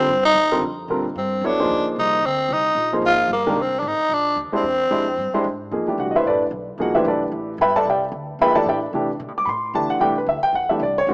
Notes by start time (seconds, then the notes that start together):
Already playing: C4
0.08 G2
0.25 D#4
0.34 D#2
0.52 D3 G3 C4 F4 A#4
0.62 F2
0.88 A#2 D3 G3 C4 F4 A#4
1.16 G2 C4
1.41 F2 F#3 B3 E4 A4 C#5
1.46 D4
1.59 F3 A#3 D#4 G#4 C5
1.69 D#2
1.85 muted upright bass stroke
1.96 C2 D#4
2.22 D2 C4
2.49 C2
2.53 D#4
2.75 A#1
2.93 F3 A#3 D#4 G#4 C5
3.02 G#1
3.06 F4
3.28 G1
3.33 A#3
3.46 D#3 G#3 D4 G4 A#4
3.56 C2
3.61 C4
3.79 G#1 D4
3.87 D#4
3.98 muted upright bass stroke
4.09 A#1
4.13 D4
4.36 D#2
4.52 G#3 D4 E4 G4 C5, muted upright bass stroke
4.57 C4
4.63 E2
4.91 F2 G#3 D4 E4 G4 C5
5.18 G2
5.33 G#3 D4 E4 G4 C5, muted upright bass stroke
5.44 G#2
5.71 E2 F3 A#3 D#4 G#4
5.87 E3 A3 D4 G4
5.98 C2 F#4 F#5
6.11 D#5
6.16 E4 B4 C5 E5
6.24 A1 A4 D5
6.28 D4 B4
6.51 B1
6.78 C2 F3 A#3 D#4 F#4 G#4 F#5
6.95 E3 A3 D4 E4 G4 B4 C5 E5
7.05 B1 D4 A4 B4 D5
7.32 A1
7.58 G1 B4 E5 G5 B5
7.76 A4 D5 E5 A5
7.85 C2 G4
7.90 D5 E5 G5
8.12 D2
8.39 E2 F3 A#3 D#4 G#4 B4 E5 G5 B5
8.55 E3 A3 D4 G4 A4 D5 E5 A5
8.66 A2 G4 D5 E5 G5
8.93 C3 E3 A3 D4 G4
9.20 B2
9.28 A2
9.38 G2 D6
9.45 A2 B5 C6
9.74 D2 E3 A3 D4 G4 A5
9.89 F#5, muted upright bass stroke
10.00 C2 E3 A3 D4 G4 G5
10.18 B4
10.26 D2 E5
10.43 G5, muted upright bass stroke
10.53 E2 F#5
10.69 E3 A3 D4 G4 E5
10.79 C2 D5
10.98 C#5
11.07 A1 D#3 G#3 C#4 F#4 C5